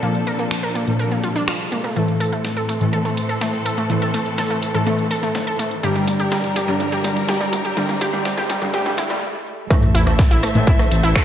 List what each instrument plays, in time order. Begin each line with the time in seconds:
Already playing: synth drone C3 C4, string section F3 D4 A4, riser
0.03 synth stab A#2 F3 A#3, synth arpeggio sound A#3, closed hi-hat
0.15 closed hi-hat
0.27 synth arpeggio sound A#4, closed hi-hat
0.39 synth arpeggio sound A#3, closed hi-hat
0.51 finger snap, closed hi-hat
0.63 synth arpeggio sound A#4, closed hi-hat
0.75 synth arpeggio sound A#3, closed hi-hat
0.87 synth stab A#2 F3 A#3, closed hi-hat
0.99 synth arpeggio sound A#4, closed hi-hat
1.12 synth arpeggio sound A#3, closed hi-hat
1.24 synth arpeggio sound F4, closed hi-hat
1.36 synth arpeggio sound D4, closed hi-hat
1.48 synth arpeggio sound F4, finger snap, closed hi-hat
1.60 closed hi-hat
1.72 synth arpeggio sound A#3, closed hi-hat
1.84 synth arpeggio sound A#3, closed hi-hat
1.96 synth stab A2 E3 A3, string section A2 E3 C4 A4, synth arpeggio sound A3, closed hi-hat, mid tom, riser
2.08 closed hi-hat
2.20 synth arpeggio sound A4, closed hi-hat, open hi-hat
2.32 synth arpeggio sound A3, closed hi-hat
2.45 snare, closed hi-hat, mid tom
2.57 synth arpeggio sound A4, snare, closed hi-hat
2.69 synth arpeggio sound A3, closed hi-hat, open hi-hat
2.81 synth stab A2 E3 A3, closed hi-hat
2.93 synth arpeggio sound A4, closed hi-hat, mid tom
3.05 synth arpeggio sound A3, snare, closed hi-hat
3.17 closed hi-hat, open hi-hat
3.29 synth arpeggio sound A4, snare, closed hi-hat
3.41 synth arpeggio sound A3, snare, closed hi-hat, mid tom
3.54 snare, closed hi-hat
3.66 synth arpeggio sound A4, closed hi-hat, open hi-hat
3.78 synth arpeggio sound A3, closed hi-hat
3.90 synth stab A2 E3 A3, closed hi-hat, mid tom
4.02 synth arpeggio sound A4, snare, closed hi-hat
4.14 synth arpeggio sound A3, closed hi-hat, open hi-hat
4.26 closed hi-hat
4.38 synth arpeggio sound A4, snare, closed hi-hat, mid tom
4.50 synth arpeggio sound A3, closed hi-hat
4.62 closed hi-hat, open hi-hat
4.74 synth stab A2 E3 A3, synth arpeggio sound A4, closed hi-hat
4.87 synth arpeggio sound A3, closed hi-hat, mid tom
4.99 closed hi-hat
5.11 synth arpeggio sound A4, closed hi-hat, open hi-hat
5.23 synth arpeggio sound A3, snare, closed hi-hat
5.35 snare, closed hi-hat, mid tom
5.47 synth arpeggio sound A4, closed hi-hat
5.59 synth arpeggio sound A3, snare, closed hi-hat, open hi-hat
5.71 closed hi-hat
5.83 string section G2 G3 D4 A#4, synth stab G2 D3 G3, synth arpeggio sound G4, closed hi-hat, mid tom
5.95 synth arpeggio sound G3, closed hi-hat
6.08 closed hi-hat, open hi-hat, mid tom
6.20 synth arpeggio sound G4, closed hi-hat
6.32 synth arpeggio sound G3, snare, closed hi-hat, mid tom
6.44 snare, closed hi-hat
6.56 synth arpeggio sound G4, closed hi-hat, open hi-hat, mid tom
6.68 synth stab G2 D3 G3, synth arpeggio sound G3, closed hi-hat
6.80 closed hi-hat, mid tom
6.92 synth arpeggio sound G4, snare, closed hi-hat
7.04 synth arpeggio sound G3, closed hi-hat, open hi-hat, mid tom
7.17 snare, closed hi-hat
7.28 synth arpeggio sound G4, snare, closed hi-hat, mid tom
7.41 synth arpeggio sound G3, snare, closed hi-hat
7.53 closed hi-hat, open hi-hat, mid tom
7.65 synth arpeggio sound G4, closed hi-hat
7.77 synth stab G2 D3 G3, synth arpeggio sound G3, string section C4, closed hi-hat, mid tom
7.89 snare, closed hi-hat, mid tom
8.01 synth arpeggio sound G4, closed hi-hat, open hi-hat, mid tom
8.13 synth arpeggio sound G3, closed hi-hat, mid tom
8.25 snare, closed hi-hat, mid tom
8.37 synth arpeggio sound G4, closed hi-hat, mid tom
8.49 synth arpeggio sound G3, closed hi-hat, open hi-hat, mid tom
8.62 synth stab G2 D3 G3, closed hi-hat, mid tom
8.74 synth arpeggio sound G4, closed hi-hat, mid tom
8.86 synth arpeggio sound G3, closed hi-hat, mid tom
8.98 synth arpeggio sound E4, closed hi-hat, open hi-hat, mid tom
9.10 synth arpeggio sound G3, snare, closed hi-hat, mid tom
9.70 synth stab A2 E3 A3, synth arpeggio sound A3, string section A3 A4 C5 E5, kick, cross-stick, closed hi-hat, sub drop
9.83 closed hi-hat
9.95 detuned saw bass A1, synth arpeggio sound E4, closed hi-hat, open hi-hat
10.07 detuned saw bass A1, synth arpeggio sound A3, cross-stick, closed hi-hat
10.19 kick, snare, closed hi-hat
10.31 detuned saw bass A1, synth arpeggio sound E4, snare, closed hi-hat
10.43 synth arpeggio sound A3, cross-stick, closed hi-hat, open hi-hat
10.55 detuned saw bass A2, synth stab A2 E3 A3, closed hi-hat
10.67 synth arpeggio sound E4, kick, closed hi-hat
10.79 synth arpeggio sound A3, cross-stick, snare, closed hi-hat
10.91 detuned saw bass A1, closed hi-hat, open hi-hat
11.03 detuned saw bass A1, synth arpeggio sound E4, snare, closed hi-hat
11.16 synth arpeggio sound A3, finger snap, kick, cross-stick, snare, closed hi-hat